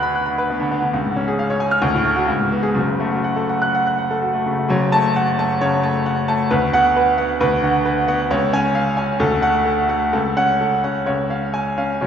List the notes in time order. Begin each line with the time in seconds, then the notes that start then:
Already playing: D2 D3 B3 B4 F#5 B5 F#6
0.03 B5
0.15 F#6
0.26 B5
0.38 B4
0.50 B3
0.60 D3
0.71 B3
0.83 D3
0.93 C#2
1.05 G#2
1.16 C#4
1.28 G#4
1.39 F5
1.50 C#5
1.60 G#5
1.71 F6
1.82 D2
1.94 A2
2.05 A3
2.16 F#4
2.27 C#2
2.40 G#2
2.52 B3
2.63 G#4
2.75 F#1 F#2
2.87 C#3
3.00 A3
3.12 F#4
3.24 F#5
3.36 A4
3.49 F#5
3.62 F#6
3.74 F#5
3.87 F#6
3.98 F#5
4.11 A4
4.22 F#4
4.33 A3
4.46 C#3
4.58 A3
4.69 F#1 F#2 C#5
4.92 A3 A5
5.16 F#5
5.39 A3 A5
5.61 C#3 C#5
5.83 A3 A5
6.06 F#5
6.28 A3 A5
6.51 D2 B4
6.73 B3 F#5
6.96 B4
7.18 B3 F#5
7.41 D2 B4
7.63 D3 F#5
7.85 B4
8.08 B3 F#5
8.31 C#2 C#5
8.53 C#4 G#5
8.75 F5
8.97 C#4 G#5
9.20 D2 A4
9.42 A3 F#5
9.65 A4
9.89 A3 F#5
10.13 C#2 A4
10.37 C#4 F#5
10.61 A4
10.84 C#4 F#5
11.06 C#2 C#5
11.30 C#4 F5
11.54 G#5
11.78 C#4 F5
12.01 F#1 F#2 C#5